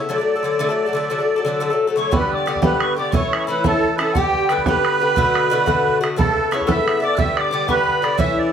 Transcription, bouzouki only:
0.09 0.18 D3 medium
0.09 0.19 F#3 medium
0.09 0.18 A3 medium
0.09 0.17 A4 medium
0.18 0.37 F#3 soft
0.18 0.35 A3 soft
0.18 0.35 A4 soft
0.36 0.43 F#3 soft
0.36 0.43 A3 soft
0.36 0.44 A4 soft
0.43 0.58 D3 soft
0.43 0.59 F#3 medium
0.43 0.59 A3 medium
0.43 0.60 A4 medium
0.59 0.69 D3 medium
0.59 0.69 F#3 medium
0.59 0.69 A3 medium
0.59 0.68 A4 medium
0.69 0.87 F#3 soft
0.69 0.86 A3 medium
0.69 0.85 A4 soft
0.86 0.93 F#3 soft
0.86 0.94 A3 soft
0.86 0.94 A4 soft
0.93 1.09 D3 medium
0.93 1.09 F#3 medium
0.93 1.10 A3 medium
0.93 1.10 A4 medium
1.10 1.20 D3 medium
1.10 1.20 F#3 medium
1.10 1.19 A3 medium
1.10 1.17 A4 medium
1.19 1.38 F#3 soft
1.19 1.37 A3 soft
1.19 1.35 A4 soft
1.36 1.45 F#3 soft
1.36 1.46 A3 soft
1.36 1.45 A4 medium
1.45 1.59 D3 medium
1.45 1.60 F#3 medium
1.45 1.60 A3 medium
1.45 1.61 A4 medium
1.60 1.70 D3 medium
1.60 1.71 F#3 medium
1.60 1.70 A3 medium
1.60 1.69 A4 medium
1.70 1.89 F#3 soft
1.70 1.87 A3 soft
1.70 1.86 A4 soft
1.87 1.96 F#3 soft
1.87 1.96 A3 medium
1.87 1.96 A4 medium
1.96 2.11 D3 soft
1.96 2.11 F#3 medium
1.96 2.12 A3 medium
1.96 2.13 A4 medium
2.11 2.45 G2 medium
2.11 2.46 D3 medium
2.11 2.47 B3 medium
2.11 2.47 G4 medium
2.46 2.62 G2 medium
2.46 2.62 D3 medium
2.46 2.61 B3 medium
2.46 2.61 G4 medium
2.62 2.98 G2 medium
2.62 2.97 D3 medium
2.62 2.96 B3 medium
2.62 2.95 G4 medium
2.96 3.13 D3 soft
2.96 3.13 B3 soft
2.96 3.13 G4 soft
3.12 3.46 A2 medium
3.12 3.47 E3 medium
3.12 3.48 C#4 medium
3.12 3.48 E4 medium
3.47 3.63 A2 medium
3.47 3.64 E3 medium
3.47 3.64 C#4 medium
3.47 3.63 E4 medium
3.64 4.00 A2 medium
3.64 4.00 E3 medium
3.64 3.98 C#4 medium
3.64 3.97 E4 medium
3.98 4.15 E3 soft
3.98 4.15 C#4 soft
3.98 4.14 E4 medium
4.15 4.48 G2 medium
4.15 4.49 D3 medium
4.15 4.51 B3 medium
4.15 4.50 G4 medium
4.49 4.65 G2 medium
4.49 4.66 D3 medium
4.49 4.66 B3 medium
4.49 4.65 G4 medium
4.67 5.01 G2 soft
4.67 5.01 D3 medium
4.67 5.01 B3 medium
4.67 4.99 G4 medium
5.00 5.16 D3 soft
5.00 5.17 B3 soft
5.00 5.16 G4 soft
5.16 5.49 B2 medium
5.16 5.50 D3 medium
5.16 5.51 A3 medium
5.16 5.52 F#4 medium
5.50 5.66 B2 medium
5.50 5.66 D3 medium
5.50 5.66 A3 medium
5.50 5.65 F#4 medium
5.66 6.02 B2 medium
5.66 6.02 D3 medium
5.66 6.01 A3 medium
5.66 5.99 F#4 medium
6.01 6.17 D3 soft
6.01 6.17 A3 soft
6.01 6.17 F#4 medium
6.16 6.50 C#3 medium
6.16 6.51 B3 medium
6.16 6.52 E4 medium
6.16 6.52 A4 medium
6.51 6.67 C#3 medium
6.51 6.67 B3 medium
6.51 6.66 E4 medium
6.51 6.66 A4 medium
6.67 7.03 C#3 soft
6.67 7.03 B3 medium
6.67 7.01 E4 medium
6.67 6.99 A4 medium
7.00 7.17 B3 soft
7.00 7.18 E4 soft
7.00 7.17 A4 soft
7.17 7.50 G2 medium
7.17 7.51 D3 medium
7.17 7.52 B3 medium
7.17 7.53 G4 medium
7.51 7.68 G2 medium
7.51 7.68 D3 medium
7.51 7.68 B3 medium
7.51 7.67 G4 medium
7.68 8.04 G2 soft
7.68 8.03 D3 medium
7.68 8.02 B3 medium
7.68 8.01 G4 medium
8.02 8.18 D3 soft
8.02 8.19 B3 medium
8.02 8.19 G4 medium
8.18 8.51 A2 medium
8.18 8.52 E3 medium
8.18 8.53 C#4 medium
8.18 8.53 E4 medium

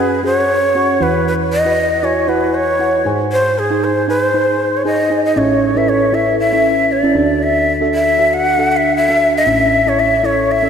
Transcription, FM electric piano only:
0.00 0.97 F#2 medium
0.00 0.23 C#4 medium
0.00 0.24 F#4 medium
0.00 0.24 G#4 medium
0.00 0.24 F#5 medium
0.23 0.64 C#4 medium
0.23 0.64 F#4 medium
0.23 0.64 G#4 medium
0.23 0.65 F#5 medium
0.75 0.95 C#4 medium
0.75 0.95 F#4 medium
0.75 0.96 G#4 medium
0.75 0.96 F#5 medium
1.00 3.02 E2 medium
1.00 3.02 E3 medium
1.00 1.52 E4 medium
1.00 1.52 F#4 medium
1.00 1.52 B4 medium
1.00 1.52 F#5 medium
1.65 1.95 E4 medium
1.65 1.95 F#4 medium
1.65 1.95 B4 medium
1.65 1.95 F#5 medium
2.03 2.23 E4 medium
2.03 2.24 F#4 medium
2.03 2.24 B4 medium
2.03 2.24 G#5 medium
2.28 2.69 E4 medium
2.28 2.69 F#4 medium
2.28 2.69 B4 medium
2.28 2.70 F#5 medium
2.79 3.00 E4 medium
2.79 3.00 F#4 medium
2.79 3.00 B4 medium
2.79 3.01 F#5 medium
3.05 5.07 G#2 medium
3.05 3.57 D#4 medium
3.05 3.57 G#4 medium
3.05 3.57 C5 medium
3.05 3.58 G#5 medium
3.70 4.00 D#4 medium
3.70 4.00 G#4 medium
3.70 4.00 C5 medium
3.70 4.01 G#5 medium
4.08 4.28 D#4 medium
4.08 4.29 G#4 medium
4.08 4.29 C5 medium
4.08 4.29 G#5 medium
4.34 4.75 D#4 medium
4.34 4.75 G#4 medium
4.34 4.75 C5 medium
4.34 4.75 G#5 medium
4.85 5.05 D#4 medium
4.85 5.06 G#4 medium
4.85 5.06 C5 medium
4.85 5.06 G#5 medium
5.10 5.31 D#4 medium
5.10 5.31 G#4 medium
5.10 5.31 C5 medium
5.10 5.31 G#5 medium
5.36 7.12 A1 medium
5.36 7.12 A2 medium
5.36 5.66 C#4 medium
5.36 5.66 E4 medium
5.36 5.66 A4 medium
5.36 5.67 E5 medium
5.76 6.05 C#4 medium
5.76 6.05 E4 medium
5.76 6.06 A4 medium
5.76 6.06 B4 medium
6.12 6.43 C#4 medium
6.12 6.43 E4 medium
6.12 6.43 A4 medium
6.12 6.43 E5 medium
6.53 6.91 C#4 medium
6.53 6.91 E4 medium
6.53 6.91 A4 medium
6.53 6.91 E5 medium
7.03 7.16 C#4 medium
7.03 7.16 E4 medium
7.03 7.15 A4 medium
7.03 7.15 E5 medium
7.15 9.17 D2 medium
7.15 9.17 D3 medium
7.15 7.67 D4 medium
7.15 7.67 F#4 medium
7.15 7.67 A4 medium
7.15 7.67 E5 medium
7.81 8.10 D4 medium
7.81 8.10 F#4 medium
7.81 8.11 A4 medium
7.81 8.11 E5 medium
8.18 8.48 D4 medium
8.18 8.49 F#4 medium
8.18 8.49 A4 medium
8.18 8.49 E5 medium
8.58 8.96 D4 medium
8.58 8.96 F#4 medium
8.58 8.97 A4 medium
8.58 8.97 E5 medium
9.09 9.38 D4 medium
9.09 9.39 F#4 medium
9.09 9.39 A4 medium
9.09 9.39 E5 medium
9.46 10.70 A1 medium
9.46 10.70 A2 medium
9.46 9.76 C#4 medium
9.46 9.77 E4 medium
9.46 9.77 A4 medium
9.46 9.77 E5 medium
9.86 10.15 C#4 medium
9.86 10.15 E4 medium
9.86 10.16 A4 medium
9.86 10.16 E5 medium
10.23 10.53 C#4 medium
10.23 10.53 E4 medium
10.23 10.54 A4 medium
10.23 10.54 E5 medium
10.63 10.70 C#4 medium
10.63 10.70 E4 medium
10.63 10.70 A4 medium
10.63 10.70 E5 medium

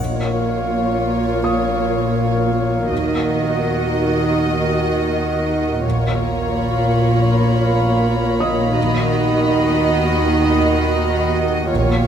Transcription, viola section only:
0.00 5.80 A#3 soft
0.00 2.87 F4 soft
2.91 5.80 F#4 soft
5.84 11.66 A#3 soft
5.84 8.73 F4 soft
8.77 11.66 F#4 soft
11.70 12.07 A#3 soft
11.70 12.07 F4 soft

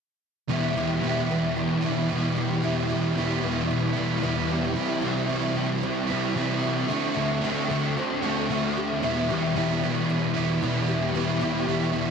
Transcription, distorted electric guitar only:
0.49 1.01 E2 medium
0.49 0.77 B2 medium
0.49 0.75 E3 loud
0.75 1.02 B2 medium
0.75 1.05 E3 medium
1.02 2.11 E2 medium
1.02 1.30 B2 medium
1.02 1.28 E3 loud
1.29 1.86 B2 medium
1.29 1.84 E3 medium
1.84 2.11 B2 medium
1.84 2.13 E3 medium
2.11 2.62 E2 medium
2.11 2.63 B2 medium
2.11 2.65 E3 medium
2.63 3.15 E2 medium
2.63 2.93 B2 medium
2.63 2.90 E3 loud
2.90 3.17 B2 medium
2.90 3.19 E3 medium
3.16 3.70 E2 medium
3.16 3.45 B2 medium
3.16 3.44 E3 loud
3.45 3.97 B2 soft
3.45 3.95 E3 medium
3.96 4.22 B2 medium
3.96 4.24 E3 medium
4.22 4.74 E2 medium
4.22 4.75 B2 medium
4.22 4.75 E3 medium
4.76 5.28 C3 medium
4.76 5.06 G3 medium
4.76 5.04 C4 medium
5.04 5.30 G3 medium
5.04 5.30 C4 medium
5.29 5.82 C3 medium
5.29 5.57 G3 medium
5.29 5.54 C4 medium
5.55 6.12 G3 medium
5.55 6.08 C4 medium
6.10 6.37 G3 medium
6.10 6.37 C4 medium
6.36 6.87 C3 medium
6.36 6.90 G3 medium
6.36 6.88 C4 medium
6.89 7.41 D3 medium
6.89 7.17 A3 medium
6.89 7.16 D4 medium
7.16 7.43 A3 medium
7.16 7.45 D4 medium
7.42 7.95 D3 medium
7.42 7.70 A3 medium
7.42 7.68 D4 loud
7.69 8.25 A3 soft
7.69 8.22 D4 medium
8.22 8.50 A3 soft
8.22 8.52 D4 medium
8.50 9.01 D3 medium
8.50 9.01 A3 medium
8.50 9.05 D4 medium
9.02 9.55 E2 medium
9.02 9.31 B2 medium
9.02 9.29 E3 medium
9.30 9.56 B2 medium
9.30 9.58 E3 medium
9.56 10.61 E2 medium
9.56 9.83 B2 medium
9.56 9.81 E3 loud
9.82 10.36 B2 medium
9.82 10.35 E3 medium
10.35 10.62 B2 soft
10.35 10.64 E3 medium
10.61 11.12 E2 medium
10.61 11.14 B2 medium
10.61 11.16 E3 medium
11.13 11.66 E2 medium
11.13 11.42 B2 medium
11.13 11.41 E3 medium
11.41 11.67 B2 soft
11.41 11.69 E3 medium
11.67 12.11 E2 medium
11.67 11.95 B2 medium
11.67 11.93 E3 medium
11.93 12.11 B2 medium
11.93 12.11 E3 medium

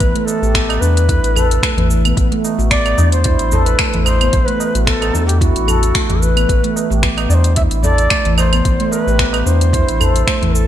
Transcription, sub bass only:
0.01 0.13 A1 loud
0.42 0.78 A1 loud
0.81 1.19 E2 loud
1.23 1.59 A1 medium
1.77 2.13 A1 loud
2.17 2.29 A1 loud
2.58 2.94 A1 loud
2.98 3.36 E2 medium
3.40 3.76 A1 medium
3.94 4.30 A1 loud
4.33 4.45 A1 loud
4.75 5.11 A1 loud
5.14 5.52 E2 medium
5.56 5.92 A1 medium
6.10 6.46 A1 loud
6.49 6.61 A1 loud
6.91 7.27 A1 loud
7.30 7.68 E2 medium
7.71 8.08 A1 medium
8.25 8.61 A1 medium
8.65 8.77 A1 loud
9.07 9.43 A1 loud
9.46 9.84 E2 medium
9.88 10.24 A1 medium
10.42 10.67 A1 loud

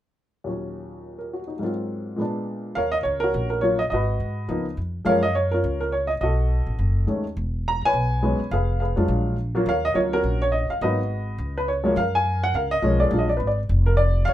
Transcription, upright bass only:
2.77 3.03 D#2 medium
3.05 3.32 C#2 medium
3.34 3.89 A#1 medium
3.92 4.18 G#1 medium
4.20 4.47 G#2 medium
4.49 4.76 C#2 medium
4.77 5.04 F2 medium
5.05 5.61 F#2 medium
5.64 6.19 C#2 medium
6.21 6.64 B1 medium
6.67 6.78 A1 medium
6.79 7.06 F#1 medium
7.07 7.34 D#2 medium
7.37 7.79 E1 medium
7.82 7.93 D#2 medium
7.93 8.36 B1 medium
8.39 muted upright bass stroke soft
8.51 8.94 F1 medium
8.97 9.08 F2 medium
9.08 9.63 A#1 medium
9.66 9.93 D#2 medium
9.95 10.22 D2 medium
10.24 10.66 A#1 medium
10.70 muted upright bass stroke soft
10.81 11.36 G#1 medium
11.38 11.93 C#2 medium
11.96 12.51 F#2 medium
12.54 12.81 C#2 medium
12.82 13.09 B1 medium
13.11 13.38 A#1 medium
13.40 13.67 G#1 medium
13.69 14.24 F1 medium
14.28 14.34 D#2 medium

